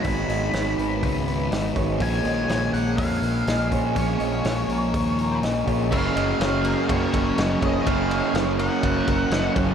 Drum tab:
CC |--------|--------|--------|x-------|
RD |--------|--------|--------|-xxxxxxx|
HH |oooooooo|oooooooo|oooooooo|--------|
SD |--o---o-|--o---o-|--o---o-|--o---o-|
BD |o---o--o|o---o--o|o---o--o|o---oo-o|

CC |--------|
RD |xxxxxxxx|
HH |--------|
SD |--o---o-|
BD |o---oo-o|